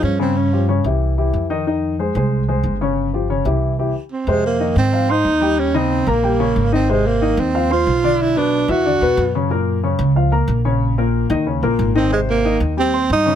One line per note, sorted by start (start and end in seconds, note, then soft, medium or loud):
0.00 0.79 G2 medium
0.00 0.13 F3 medium
0.00 0.19 C#4 medium
0.00 0.14 F4 medium
0.00 0.14 G#4 medium
0.19 0.46 C#3 medium
0.19 0.39 C4 medium
0.19 0.46 C#4 medium
0.19 0.47 C#5 medium
0.37 0.69 C#4 medium
0.53 0.66 F3 medium
0.53 0.66 F4 medium
0.53 0.66 G4 medium
0.68 0.82 C#3 medium
0.68 0.82 C#4 medium
0.68 0.82 C#5 medium
0.84 1.30 C2 medium
0.84 1.12 E3 medium
0.84 1.12 E4 medium
0.84 1.12 G4 medium
1.18 1.44 E3 medium
1.18 1.44 E4 medium
1.18 1.45 G4 medium
1.33 2.10 F2 medium
1.50 1.63 D#3 medium
1.50 1.63 D#4 medium
1.50 1.64 D#5 medium
1.67 1.93 D#3 medium
1.67 1.94 D#4 medium
1.67 1.94 D#5 medium
1.99 2.12 G#3 medium
1.99 2.13 G#4 medium
1.99 2.13 C5 medium
2.15 2.61 C2 medium
2.15 2.42 G#3 medium
2.15 2.43 G#4 medium
2.15 2.43 C5 medium
2.48 2.75 G#3 medium
2.48 2.75 G#4 medium
2.48 2.75 C5 medium
2.63 3.40 G1 medium
2.81 3.08 C#3 medium
2.81 3.08 C#4 medium
2.81 3.08 C#5 medium
3.13 3.27 F3 medium
3.13 3.27 F4 medium
3.13 3.27 G4 medium
3.30 3.43 C#3 medium
3.30 3.43 C#4 medium
3.30 3.43 C#5 medium
3.45 3.91 C2 medium
3.45 3.72 E3 medium
3.45 3.72 E4 medium
3.45 3.72 G4 medium
3.79 3.92 E3 medium
3.79 3.92 E4 medium
3.79 3.92 G4 medium
4.12 4.30 C4 medium
4.27 4.73 F2 medium
4.27 4.54 C3 medium
4.27 4.45 G#3 medium
4.27 4.55 C4 medium
4.27 4.55 C5 medium
4.46 4.75 A#3 medium
4.60 4.87 D#3 medium
4.60 4.87 D#4 medium
4.60 4.87 D#5 medium
4.76 5.22 G#2 medium
4.76 5.12 C4 medium
4.92 5.06 F3 medium
4.92 5.06 F4 medium
4.92 5.06 F5 medium
5.09 5.36 C4 medium
5.09 5.61 D#4 loud
5.09 5.36 C5 medium
5.09 5.36 C6 medium
5.25 6.01 D#2 medium
5.41 5.68 G3 medium
5.41 5.68 G4 medium
5.41 5.69 G5 medium
5.60 5.79 C#4 medium
5.74 6.01 C#3 medium
5.74 6.11 C4 medium
5.74 6.01 D#4 medium
5.74 6.01 D#5 medium
6.07 6.52 A#1 medium
6.07 6.20 A#3 medium
6.07 6.74 A#3 medium
6.07 6.21 A#4 medium
6.07 6.21 A#5 medium
6.23 6.37 G3 medium
6.23 6.37 G4 medium
6.23 6.37 G5 medium
6.40 6.66 C#3 medium
6.40 6.67 C#4 medium
6.40 6.67 C#5 medium
6.56 7.32 G#1 medium
6.72 6.86 D#3 medium
6.72 6.92 C4 medium
6.72 6.86 D#4 medium
6.72 6.86 D#5 medium
6.89 7.15 C3 medium
6.89 7.08 G#3 medium
6.89 7.16 C4 medium
6.89 7.16 C5 medium
7.06 7.41 A#3 loud
7.21 7.48 D#3 medium
7.21 7.48 D#4 medium
7.21 7.49 D#5 medium
7.37 7.83 D#2 medium
7.37 7.74 C4 medium
7.54 7.68 F3 medium
7.54 7.68 F4 medium
7.54 7.68 F5 medium
7.70 7.97 C4 medium
7.70 8.23 F4 loud
7.70 7.97 C5 medium
7.70 7.98 C6 medium
7.87 8.63 B1 medium
8.04 8.30 D3 medium
8.04 8.30 D4 medium
8.04 8.31 D5 medium
8.21 8.39 E4 medium
8.36 8.63 B2 medium
8.36 8.63 B3 medium
8.36 8.72 D4 loud
8.36 8.63 B4 medium
8.68 8.99 E2 medium
8.68 8.82 E3 medium
8.68 8.82 E4 medium
8.68 9.35 F#4 medium
8.68 8.82 E5 medium
8.85 8.98 D3 medium
8.85 8.99 D4 medium
8.85 8.99 D5 medium
9.01 9.16 E2 medium
9.01 9.28 B2 medium
9.01 9.29 B3 medium
9.01 9.29 B4 medium
9.17 9.93 F#2 medium
9.35 9.48 C#3 medium
9.35 9.48 C#4 medium
9.35 9.48 C#5 medium
9.50 9.77 A#2 medium
9.50 9.77 A#3 medium
9.50 9.78 A#4 medium
9.83 10.10 C#3 medium
9.83 10.10 C#4 medium
9.83 10.10 C#5 medium
9.99 10.45 C#2 medium
10.16 10.29 F3 medium
10.16 10.29 F4 medium
10.16 10.29 F5 medium
10.32 10.59 A#3 medium
10.32 10.59 A#4 medium
10.32 10.59 A#5 medium
10.48 11.24 A#1 medium
10.65 10.92 C#3 medium
10.65 10.92 C#4 medium
10.65 10.92 C#5 medium
10.98 11.24 A#2 medium
10.98 11.25 A#3 medium
10.98 11.25 A#4 medium
11.30 11.60 D#2 medium
11.30 11.43 D#3 medium
11.30 11.43 D#4 medium
11.30 11.44 D#5 medium
11.46 11.60 C#3 medium
11.46 11.60 C#4 medium
11.46 11.60 C#5 medium
11.63 11.78 A#1 medium
11.63 11.90 A#2 medium
11.63 11.90 A#3 medium
11.63 11.90 A#4 medium
11.79 12.55 G#1 medium
11.95 12.09 D#3 medium
11.95 12.11 C4 medium
11.95 12.09 D#4 medium
11.95 12.09 D#5 medium
12.12 12.39 C3 medium
12.12 12.20 G#3 medium
12.12 12.39 C4 medium
12.12 12.39 C5 medium
12.30 12.59 A#3 medium
12.45 12.72 D#3 medium
12.45 12.72 D#4 medium
12.45 12.72 D#5 medium
12.60 13.06 D#2 medium
12.77 12.91 G3 medium
12.77 13.09 C4 loud
12.77 12.91 G4 medium
12.77 12.91 G5 medium
12.93 13.20 C4 medium
12.93 13.20 C5 medium
12.93 13.21 C6 medium
13.10 13.35 G2 medium
13.10 13.35 D#4 loud
13.26 13.35 C#3 medium
13.26 13.35 C#4 medium
13.26 13.35 C#5 medium